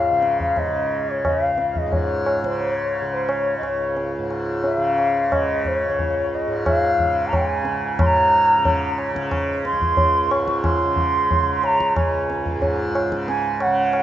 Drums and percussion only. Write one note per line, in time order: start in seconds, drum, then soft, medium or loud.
0.22 tabla te medium
0.40 tabla ge soft
0.57 tabla tin medium
0.57 tabla ge medium
1.25 tabla na medium
1.25 tabla ge medium
1.58 tabla te medium
1.76 tabla ge medium
1.92 tabla tin medium
1.92 tabla ge medium
2.26 tabla na medium
2.44 tabla ke medium
2.61 tabla tin medium
3.29 tabla na medium
3.63 tabla na medium
3.97 tabla tin medium
4.30 tabla na medium
4.64 tabla tin medium
4.98 tabla na medium
5.32 tabla na medium
5.32 tabla ge medium
5.65 tabla ge medium
5.99 tabla tin medium
5.99 tabla ge medium
6.66 tabla na medium
6.66 tabla ge medium
6.99 tabla ge medium
7.33 tabla na medium
7.33 tabla ge medium
7.65 tabla te medium
7.99 tabla na loud
7.99 tabla ge loud
8.65 tabla tin medium
8.65 tabla ge medium
8.98 tabla na medium
9.16 tabla ke medium
9.31 tabla na medium
9.31 tabla ge medium
9.65 tabla te medium
9.82 tabla ge medium
9.97 tabla tin medium
9.97 tabla ge medium
10.31 tabla na medium
10.48 tabla ke medium
10.64 tabla na medium
10.64 tabla ge medium
10.96 tabla ge medium
11.31 tabla tin medium
11.31 tabla ge medium
11.64 tabla na medium
11.80 tabla ke medium
11.96 tabla na medium
11.96 tabla ge medium
12.30 tabla te medium
12.46 tabla ge medium
12.62 tabla tin medium
12.62 tabla ge medium
12.95 tabla na medium
13.12 tabla ke medium
13.28 tabla te medium
13.60 tabla na medium
13.93 tabla na medium